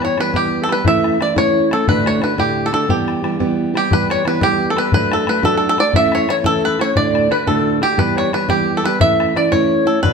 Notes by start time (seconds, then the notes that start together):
Already playing: E3 G3 B3 G4
0.01 C#5, bodhran
0.17 E3 G3 B3 G4 B4, bodhran
0.33 E3 G3 B3 G4, bodhran
0.61 A4
0.68 G3 B3 G4 B4, bodhran
0.72 B4
0.85 E3 A3 C#4 E4 E5, bodhran
1.04 E5, bodhran
1.19 E3 A3 C#4 E4 D5, bodhran
1.36 E3 A3 C#4 E4 C#5, bodhran
1.71 A3 C#4 E4 A4, bodhran
1.87 D2 A2 D3 A3 D4 F#4 B4, bodhran
2.06 C#5, bodhran
2.21 D3 A3 D4 F#4 B4, bodhran
2.38 D2 A2 D3 A3 D4 G4, bodhran
2.66 A4
2.72 D3 A3 D4 F#4 A4, bodhran
2.88 E3 G3 B3 G4 A4, bodhran
2.94 G4
3.08 bodhran
3.22 E3 G3 B3 G4, bodhran
3.39 E3 G3 B3 G4, bodhran
3.74 G3 B3 G4, bodhran
3.90 E3 G3 B3 G4 B4, bodhran
4.10 C#5, bodhran
4.25 E3 G3 B3 G4 B4, bodhran
4.41 E3 G3 B3 G4 A4, bodhran
4.48 G4
4.70 A4
4.76 G3 B3 G4 B4, bodhran
4.92 F#3 A3 D4 F#4 B4 C#5, bodhran
4.97 B4
5.12 A4, bodhran
5.27 F#3 A3 D4 F#4 B4, bodhran
5.43 F#3 A3 D4 F#4 A4, bodhran
5.57 A4
5.68 A4
5.77 A3 D4 F#4 D5, bodhran
5.93 E3 A3 C#4 E4 E5 F#5, bodhran
5.99 E5
6.12 C#5, bodhran
6.28 E3 A3 C#4 E4 C#5, bodhran
6.44 E3 A3 C#4 E4 A4, bodhran
6.65 B4
6.79 A3 C#4 E4 C#5, bodhran
6.95 D2 A2 D3 A3 D4 F#4 D5 E5, bodhran
7.01 D5
7.15 bodhran
7.30 D3 A3 D4 F#4 B4, bodhran
7.47 D2 A2 D3 A3 D4 F#4 A4, bodhran
7.81 D3 A3 D4 F#4 G4, bodhran
7.97 E3 G3 B3 G4 B4, bodhran
8.16 C#5, bodhran
8.32 E3 G3 B3 G4 B4, bodhran
8.49 E3 G3 B3 G4, bodhran
8.76 A4
8.83 G3 B3 G4 B4, bodhran
9.00 E3 A3 C#4 E4 E5, bodhran
9.20 bodhran
9.35 E3 A3 C#4 E4 D5, bodhran
9.51 E3 A3 C#4 E4 C#5, bodhran
9.85 A3 C#4 E4 A4
10.01 D2 A2 D3 A3 D4 F#4 B4, bodhran